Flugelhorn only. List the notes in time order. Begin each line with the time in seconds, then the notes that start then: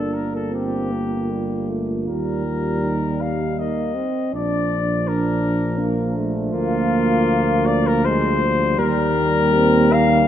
Already playing: A4
0.14 A#4
0.36 A4
0.54 G4
2.09 A#4
3.21 F5
3.59 D#5
4.35 D5
5.08 A#4
6.53 F4
7.66 D5
7.87 A#4
8.05 C5
8.79 A#4
9.93 F5